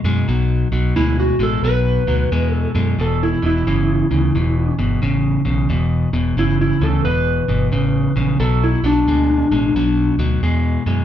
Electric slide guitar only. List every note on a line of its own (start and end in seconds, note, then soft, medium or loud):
0.96 1.18 E4 medium
1.20 1.41 F#4 medium
1.43 1.64 A4 medium
1.65 2.52 B4 medium
2.52 2.95 A4 medium
3.01 3.22 A4 medium
3.23 3.44 E4 medium
3.46 4.76 E4 medium
6.39 6.60 E4 medium
6.61 6.82 E4 medium
6.83 7.04 A4 medium
7.05 8.36 B4 loud
8.40 8.62 A4 medium
8.64 8.85 E4 medium
8.86 10.17 D4 loud